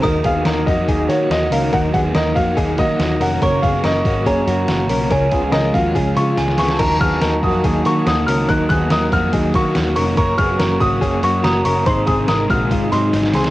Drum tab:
CC |----------------|----------------|----------------|----------------|
HH |o-o-o-o-o-o-o-o-|o-o-o-o-o-o-o-o-|o-o-o-o-o-o-o-o-|o-o-o-o-o-o-o-o-|
SD |----o-------o---|----o-------o---|----o-------o---|----o-------oooo|
BD |o-o---o-o-------|o-o---o-o-o-----|o-o---o-o-------|o-o---o-o-------|

CC |x---------------|----------------|----------------|----------------|
HH |o-o-o-o-o-o-o-o-|o-o-o-o-o-o-o-o-|o-o-o-o-o-o-o-o-|o-o-o-o-o-o-o-o-|
SD |----o-------o---|----o-------o---|----o-------o---|----o-------oooo|
BD |o-o---o-o-------|o-o---o-o-o-----|o-o---o-o-------|o-o---o-o-------|